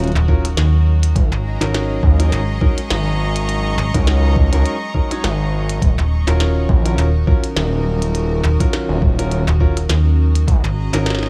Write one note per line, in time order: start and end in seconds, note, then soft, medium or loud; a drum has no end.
0.00 0.13 D#1 loud
0.00 1.12 D#3 medium
0.00 10.44 F#3 medium
0.00 5.78 C#4 medium
0.00 1.90 D#4 medium
0.00 3.04 F#4 medium
0.00 3.03 A#4 medium
0.00 closed hi-hat soft
0.08 closed hi-hat soft
0.12 0.55 D#1 medium
0.12 closed hi-hat soft
0.28 0.44 C#4 loud
0.28 0.44 F4 medium
0.28 0.44 F#4 medium
0.28 0.44 A#4 loud
0.28 kick medium
0.45 cross-stick medium
0.45 closed hi-hat medium
0.57 1.14 D#2 medium
0.57 snare loud
0.57 closed hi-hat medium
1.03 closed hi-hat medium
1.15 1.30 G#1 loud
1.15 5.78 G#3 medium
1.15 6.70 G#4 medium
1.15 kick loud
1.15 closed hi-hat medium
1.32 1.59 G#1 medium
1.32 7.12 A#5 loud
1.51 6.61 D#5 medium
1.61 2.01 G#1 loud
1.61 2.15 C#4 loud
1.61 2.15 D#4 medium
1.61 2.15 F#4 medium
1.61 2.15 A#4 loud
1.61 cross-stick soft
1.61 closed hi-hat medium
1.63 cross-stick soft
1.68 cross-stick soft
1.70 cross-stick soft
1.72 cross-stick soft
1.72 snare loud
1.72 closed hi-hat medium
2.03 2.30 D#2 medium
2.03 kick loud
2.19 2.40 C#4 medium
2.19 2.40 D#4 medium
2.19 2.40 F#4 medium
2.19 2.40 A#4 loud
2.19 7.19 C#6 medium
2.19 closed hi-hat medium
2.32 2.59 G#1 loud
2.32 closed hi-hat soft
2.61 2.77 C#4 medium
2.61 2.77 D#4 medium
2.61 2.77 F#4 medium
2.61 2.77 A#4 loud
2.61 kick loud
2.78 closed hi-hat medium
2.90 3.76 G#1 loud
2.90 snare loud
2.90 closed hi-hat medium
3.36 closed hi-hat medium
3.49 closed hi-hat medium
3.78 3.92 G#1 medium
3.94 4.50 C#2 loud
3.94 4.49 C#4 loud
3.94 4.49 D#4 medium
3.94 4.49 F#4 medium
3.94 4.49 A#4 loud
3.94 kick loud
3.94 cross-stick soft
3.94 closed hi-hat medium
4.07 snare loud
4.07 closed hi-hat soft
4.36 kick loud
4.52 4.63 C#2 loud
4.52 4.73 C#4 medium
4.52 4.73 D#4 medium
4.52 4.73 F#4 medium
4.52 4.73 A#4 loud
4.52 closed hi-hat medium
4.66 closed hi-hat medium
4.94 5.08 C#4 medium
4.94 5.08 D#4 medium
4.94 5.08 F#4 medium
4.94 5.08 A#4 medium
4.94 kick medium
5.11 5.23 C#4 medium
5.11 5.23 D#4 medium
5.11 5.23 F#4 medium
5.11 5.23 C#5 loud
5.11 cross-stick soft
5.11 closed hi-hat medium
5.24 5.80 G#1 medium
5.24 snare loud
5.24 closed hi-hat medium
5.69 closed hi-hat medium
5.82 5.96 D#1 medium
5.82 10.44 D#3 medium
5.82 11.29 C#4 medium
5.82 11.29 D#4 medium
5.82 kick loud
5.82 closed hi-hat medium
5.98 6.25 D#1 medium
6.26 6.67 D#1 loud
6.26 6.82 C#4 loud
6.26 6.82 F4 medium
6.26 6.82 F#4 medium
6.26 11.25 A#4 medium
6.26 6.82 A#4 loud
6.26 cross-stick soft
6.26 closed hi-hat medium
6.40 snare loud
6.40 closed hi-hat soft
6.69 6.96 A#1 medium
6.69 kick loud
6.85 7.06 C#4 loud
6.85 7.06 F4 medium
6.85 7.06 F#4 medium
6.85 11.29 F#4 medium
6.85 7.06 A#4 loud
6.85 closed hi-hat medium
6.98 7.25 D#1 loud
6.98 closed hi-hat medium
7.27 7.43 C#4 loud
7.27 7.43 F4 medium
7.27 7.43 F#4 medium
7.27 7.43 A#4 loud
7.27 kick loud
7.44 closed hi-hat medium
7.56 8.42 D#1 loud
7.56 snare loud
7.56 closed hi-hat soft
8.02 closed hi-hat medium
8.15 closed hi-hat medium
8.44 8.58 D#1 medium
8.60 9.15 C#4 medium
8.60 9.15 F4 medium
8.60 9.15 F#4 medium
8.60 9.15 A#4 loud
8.60 kick loud
8.60 cross-stick soft
8.60 closed hi-hat medium
8.73 snare loud
8.73 closed hi-hat soft
8.89 9.45 D#1 loud
9.02 kick loud
9.19 9.39 C#4 loud
9.19 9.39 F4 medium
9.19 9.39 F#4 medium
9.19 9.39 A#4 loud
9.19 closed hi-hat medium
9.32 closed hi-hat soft
9.47 9.87 D#1 medium
9.60 9.76 C#4 medium
9.60 9.76 F4 medium
9.60 9.76 F#4 medium
9.60 9.76 A#4 loud
9.60 kick medium
9.77 cross-stick medium
9.77 closed hi-hat medium
9.89 10.46 D#2 medium
9.89 snare loud
9.89 closed hi-hat medium
10.35 closed hi-hat medium
10.47 10.62 G#1 loud
10.47 11.29 G#3 medium
10.47 11.29 F#4 medium
10.47 11.29 G#4 medium
10.47 kick loud
10.47 closed hi-hat medium
10.60 11.29 A#5 medium
10.64 10.91 G#1 medium
10.64 11.29 D#5 medium
10.93 11.29 G#1 loud
10.93 11.29 C#4 loud
10.93 11.29 D#4 medium
10.93 11.29 F#4 medium
10.93 11.29 A#4 loud
10.93 cross-stick soft
10.93 closed hi-hat medium
11.06 snare loud
11.06 closed hi-hat soft
11.10 snare medium
11.15 snare medium
11.19 snare medium
11.23 snare soft
11.26 snare soft